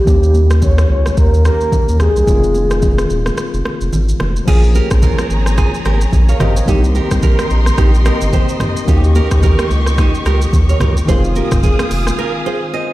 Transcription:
Already playing: soft synth lead G4
0.05 sub bass D#2, tine electric piano D#3 A#3 C#4, kick, low conga, shaker
0.10 tine electric piano G4
0.23 shaker
0.34 high conga, shaker
0.50 cross-stick, high conga, shaker
0.62 soft synth lead C#5, kick, low conga, shaker
0.78 cross-stick, high conga, shaker
0.90 sub bass C#2, soft synth lead C#5
1.06 cross-stick, high conga, shaker
1.17 sub bass D#2, soft synth lead A#4, kick, shaker
1.34 shaker
1.44 tine electric piano D#3 A#3 C#4 G4, soft synth lead A#4, cross-stick, high conga, shaker
1.61 shaker
1.72 kick, low conga, shaker
1.88 sub bass D#2, shaker
2.00 soft synth lead G#4, cross-stick, high conga, low conga, shaker
2.16 sub bass C2, shaker
2.25 sub bass F1, tine electric piano D#3 G#3 C4, kick, low conga, shaker
2.30 tine electric piano F4
2.44 shaker
2.54 high conga, shaker
2.71 cross-stick, high conga, shaker
2.82 kick, low conga, shaker
2.98 cross-stick, high conga, shaker
3.10 sub bass D#1, shaker
3.26 cross-stick, high conga, shaker
3.37 cross-stick, shaker
3.54 sub bass F1, shaker
3.65 cross-stick, high conga
3.81 sub bass F1, shaker
3.93 sub bass G#1, low conga, shaker
4.09 shaker
4.20 sub bass F1, cross-stick, high conga, low conga
4.36 shaker
4.45 sub bass A#1, tine electric piano F3 A#3 C#4, nylon-string guitar F4 G#4, string section G#4 C#5 A#5, kick, crash, low conga, shaker
4.50 tine electric piano G#4
4.64 shaker
4.75 nylon-string guitar G4 A#4, high conga, shaker
4.91 sub bass A#1, kick, cross-stick, shaker
5.02 nylon-string guitar F4 A#4, kick, low conga, shaker
5.18 cross-stick, high conga, shaker
5.30 sub bass G#1, shaker
5.46 cross-stick, high conga, shaker
5.58 nylon-string guitar F4 G#4, kick, cross-stick, shaker
5.74 shaker
5.85 sub bass G#1, nylon-string guitar G4 A#4, cross-stick, high conga, shaker
6.01 shaker
6.13 sub bass A#1, kick, low conga, shaker
6.29 nylon-string guitar A#4 C#5, tine electric piano C#5 F5, shaker
6.40 sub bass G#1, nylon-string guitar G4 A#4, tine electric piano C5 D#5, cross-stick, mid tom, high conga, low conga, shaker
6.56 tine electric piano A#4 C#5, shaker
6.65 sub bass C2, tine electric piano D#3 A#3 C4, nylon-string guitar D#4 G4, string section A#4 D#5 C6, kick, low conga, shaker
6.70 tine electric piano G4
6.84 shaker
6.95 nylon-string guitar G4 A#4, high conga, shaker
7.11 sub bass C2, kick, cross-stick, shaker
7.23 nylon-string guitar G4 A#4, kick, low conga, shaker
7.39 cross-stick, high conga, shaker
7.50 sub bass A#1, shaker
7.66 cross-stick, high conga, shaker
7.78 sub bass A#1, nylon-string guitar D#4 G4, kick, cross-stick, shaker
7.94 shaker
8.04 tine electric piano D#3 A#3 C4 G4 D#5, nylon-string guitar G4 A#4, cross-stick, high conga, shaker
8.21 sub bass G1, shaker
8.33 nylon-string guitar G4 C5, tine electric piano G5, kick, low conga, shaker
8.49 shaker
8.60 cross-stick, mid tom, high conga, low conga, shaker
8.77 shaker
8.86 sub bass D#2, tine electric piano D#3 A#3 C#4, nylon-string guitar D#4 G4, string section G4 C#6, kick, low conga, shaker
8.91 tine electric piano F#4
8.97 tine electric piano G4
9.04 shaker
9.15 nylon-string guitar G4 A#4, high conga, shaker
9.31 sub bass D#2, kick, cross-stick, shaker
9.43 nylon-string guitar G4 A#4, kick, low conga, shaker
9.59 cross-stick, high conga, shaker
9.71 sub bass C#2, shaker
9.86 cross-stick, high conga, shaker
9.98 nylon-string guitar D#4 G4, kick, cross-stick, shaker
10.15 shaker
10.26 sub bass C#2, nylon-string guitar G4 A#4, cross-stick, high conga, shaker
10.41 shaker
10.53 sub bass D#2, kick, low conga, shaker
10.69 nylon-string guitar A#4 C#5, shaker
10.80 sub bass C#2, nylon-string guitar G4 A#4, cross-stick, mid tom, high conga, low conga, shaker
10.97 shaker
11.06 sub bass F1, tine electric piano D#3 G#3 C4, string section G#4 F5 D#6, nylon-string guitar G#4 C5, kick, low conga, shaker
11.11 tine electric piano F4
11.24 shaker
11.35 nylon-string guitar G4 A#4, high conga, shaker
11.51 sub bass F1, kick, cross-stick, mid tom, shaker
11.63 nylon-string guitar F4 G#4, kick, low conga, shaker
11.79 cross-stick, high conga, shaker
11.91 sub bass F1, open hi-hat, shaker
12.07 cross-stick, high conga, shaker
12.19 nylon-string guitar F4 A#4
12.46 nylon-string guitar G#4 C5
12.74 nylon-string guitar C5 D#5

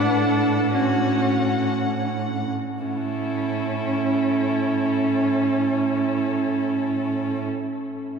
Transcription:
Already playing: cello A2, viola D4, violin B4 F#5
0.15 violin A4
0.73 viola C#4, violin F#4 F#5
2.83 cello A2, viola C#4, violin E4 A4

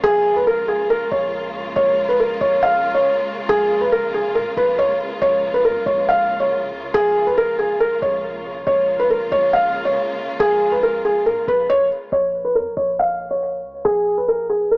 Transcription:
Already playing: string section C#3 G#3 A#3 F4
0.04 808-style bass A#1, felt piano G#4
0.36 felt piano B4
0.47 felt piano A#4
0.68 felt piano G#4
0.90 felt piano A#4
1.11 808-style bass A#1, felt piano C#5
1.76 808-style bass A#1, felt piano C#5
2.09 felt piano B4
2.20 felt piano A#4
2.41 808-style bass A#1, felt piano C#5
2.63 felt piano F5
2.94 felt piano C#5
3.49 808-style bass A#1, felt piano G#4
3.81 felt piano B4
3.92 felt piano A#4
4.14 felt piano G#4
4.35 808-style bass A#2, felt piano A#4
4.46 808-style bass A#1
4.57 808-style bass A#1, felt piano B4
4.78 808-style bass C#2, felt piano C#5
4.89 808-style bass A#1
5.22 808-style bass A#1, felt piano C#5
5.54 felt piano B4
5.65 808-style bass F2, felt piano A#4
5.76 808-style bass A#1
5.86 808-style bass A#1, felt piano C#5
6.09 felt piano F5
6.40 felt piano C#5
6.73 808-style bass C#2
6.94 808-style bass A#1, felt piano G#4
7.27 felt piano B4
7.38 felt piano A#4
7.59 felt piano G#4
7.80 felt piano A#4
8.02 808-style bass A#1, felt piano C#5
8.67 808-style bass A#1, string section C#3 G#3 A#3 F4, felt piano C#5
8.99 felt piano B4
9.10 felt piano A#4
9.32 808-style bass A#1, felt piano C#5
9.53 felt piano F5
9.85 felt piano C#5
10.40 808-style bass A#1, felt piano G#4
10.72 felt piano B4
10.83 felt piano A#4
11.05 felt piano G#4
11.26 808-style bass A#2, felt piano A#4
11.37 808-style bass A#1
11.48 808-style bass A#1, felt piano B4
11.69 808-style bass C#2, felt piano C#5
11.80 808-style bass A#1
12.12 808-style bass A#1, felt piano C#5
12.44 felt piano B4
12.55 808-style bass F2, felt piano A#4
12.66 808-style bass A#1
12.77 808-style bass A#1, felt piano C#5
12.99 felt piano F5
13.31 felt piano C#5
13.63 808-style bass C#2
13.85 808-style bass A#1, felt piano G#4
14.17 felt piano B4
14.28 felt piano A#4
14.49 felt piano G#4
14.71 felt piano A#4

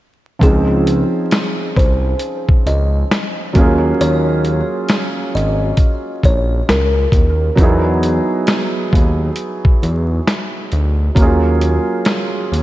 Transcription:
0.39 analog synth bass C#2, felt piano F3 C4, kick, closed hi-hat
0.43 felt piano C#4 D#4 G#4, kalimba G#4
0.87 closed hi-hat
1.31 snare, closed hi-hat
1.76 analog synth bass C2, kalimba C5, kick, closed hi-hat
2.19 closed hi-hat
2.49 kick
2.66 analog synth bass C#2, kalimba D#5, closed hi-hat
3.11 snare, closed hi-hat
3.53 analog synth bass D#2, felt piano F#3 A#3 C#4, kick, closed hi-hat
3.58 felt piano F4 G#4
4.01 analog synth bass D#2, kalimba C#5, closed hi-hat
4.45 closed hi-hat
4.89 snare, closed hi-hat
5.35 analog synth bass G#1, kalimba D#5, closed hi-hat
5.77 kick, closed hi-hat
6.23 analog synth bass A#1, kalimba C#5, kick, closed hi-hat
6.69 analog synth bass C#2, kalimba A#4, snare, closed hi-hat
7.12 analog synth bass D#2, kick, closed hi-hat
7.55 analog synth bass E2, felt piano F#3 B3 D#4, kick, closed hi-hat
7.61 felt piano E4 G#4
8.03 closed hi-hat
8.47 snare, closed hi-hat
8.93 analog synth bass D#2, kick, closed hi-hat
9.36 closed hi-hat
9.65 kick
9.83 analog synth bass E2, closed hi-hat
10.27 snare, closed hi-hat
10.72 analog synth bass D2, closed hi-hat
11.15 analog synth bass D#2, felt piano F#3 A#3 C#4, kick, closed hi-hat
11.21 felt piano F4 G#4
11.61 closed hi-hat
12.05 snare, closed hi-hat
12.52 analog synth bass D#2, closed hi-hat

